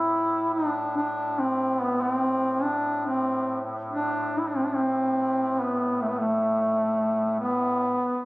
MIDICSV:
0, 0, Header, 1, 3, 480
1, 0, Start_track
1, 0, Key_signature, 0, "minor"
1, 0, Tempo, 843882
1, 772, Time_signature, 4, 2, 24, 8
1, 3172, Tempo, 894188
1, 4608, End_track
2, 0, Start_track
2, 0, Title_t, "Duduk"
2, 0, Program_c, 0, 69
2, 0, Note_on_c, 0, 64, 83
2, 300, Note_off_c, 0, 64, 0
2, 305, Note_on_c, 0, 62, 80
2, 522, Note_off_c, 0, 62, 0
2, 550, Note_on_c, 0, 62, 85
2, 790, Note_on_c, 0, 60, 84
2, 799, Note_off_c, 0, 62, 0
2, 1033, Note_on_c, 0, 59, 74
2, 1041, Note_off_c, 0, 60, 0
2, 1145, Note_on_c, 0, 60, 82
2, 1153, Note_off_c, 0, 59, 0
2, 1494, Note_on_c, 0, 62, 81
2, 1503, Note_off_c, 0, 60, 0
2, 1728, Note_off_c, 0, 62, 0
2, 1737, Note_on_c, 0, 60, 64
2, 2038, Note_off_c, 0, 60, 0
2, 2222, Note_on_c, 0, 62, 78
2, 2499, Note_on_c, 0, 64, 59
2, 2508, Note_off_c, 0, 62, 0
2, 2549, Note_on_c, 0, 62, 62
2, 2558, Note_off_c, 0, 64, 0
2, 2595, Note_on_c, 0, 60, 62
2, 2603, Note_off_c, 0, 62, 0
2, 2649, Note_on_c, 0, 62, 58
2, 2658, Note_off_c, 0, 60, 0
2, 2701, Note_on_c, 0, 60, 70
2, 2710, Note_off_c, 0, 62, 0
2, 3185, Note_on_c, 0, 59, 60
2, 3193, Note_off_c, 0, 60, 0
2, 3408, Note_on_c, 0, 57, 70
2, 3416, Note_off_c, 0, 59, 0
2, 3442, Note_on_c, 0, 59, 51
2, 3450, Note_off_c, 0, 57, 0
2, 3496, Note_on_c, 0, 57, 67
2, 3504, Note_off_c, 0, 59, 0
2, 4134, Note_off_c, 0, 57, 0
2, 4147, Note_on_c, 0, 59, 63
2, 4608, Note_off_c, 0, 59, 0
2, 4608, End_track
3, 0, Start_track
3, 0, Title_t, "Duduk"
3, 0, Program_c, 1, 69
3, 0, Note_on_c, 1, 45, 39
3, 4522, Note_off_c, 1, 45, 0
3, 4608, End_track
0, 0, End_of_file